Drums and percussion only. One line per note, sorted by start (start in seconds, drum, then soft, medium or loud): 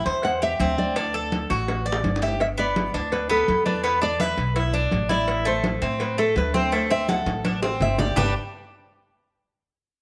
0.06 cowbell medium
0.06 high conga soft
0.23 cowbell loud
0.23 high conga soft
0.42 high conga soft
0.60 cowbell medium
0.60 high conga medium
0.78 high conga medium
0.96 cowbell loud
0.96 high conga soft
1.14 high conga soft
1.32 cowbell medium
1.32 high conga medium
1.50 cowbell medium
1.50 high conga soft
1.68 cowbell loud
1.68 high bongo medium
1.68 high conga soft
1.86 high conga soft
1.92 high bongo loud
2.04 cowbell medium
2.04 low bongo medium
2.04 high conga medium
2.16 low bongo medium
2.22 cowbell medium
2.28 low bongo medium
2.40 cowbell loud
2.40 high conga soft
2.58 high conga soft
2.76 cowbell medium
2.76 high conga loud
2.94 cowbell medium
2.94 high conga soft
3.12 cowbell loud
3.12 high conga soft
3.31 high conga soft
3.48 cowbell medium
3.48 high conga medium
3.66 high conga medium
3.84 cowbell loud
3.84 high conga soft
4.02 high conga soft
4.20 cowbell medium
4.20 high conga loud
4.38 cowbell medium
4.38 high conga soft
4.56 cowbell loud
4.56 high conga soft
4.73 high conga soft
4.91 cowbell medium
4.91 high conga medium
5.10 cowbell medium
5.10 high conga medium
5.28 cowbell loud
5.28 high conga soft
5.46 high conga soft
5.64 cowbell medium
5.64 high conga loud
5.82 cowbell medium
5.82 high conga soft
6.00 cowbell loud
6.00 high conga soft
6.18 high conga soft
6.36 cowbell medium
6.36 high conga medium
6.54 high conga medium
6.72 cowbell loud
6.72 high conga soft
6.91 high conga soft
7.09 cowbell medium
7.09 high conga loud
7.26 cowbell medium
7.26 high conga medium
7.45 cowbell loud
7.45 high conga loud
7.63 high bongo medium
7.81 cowbell medium
7.81 low conga medium
7.98 cowbell medium
7.98 low bongo medium
7.98 low conga loud
8.16 low bongo loud
8.16 low conga loud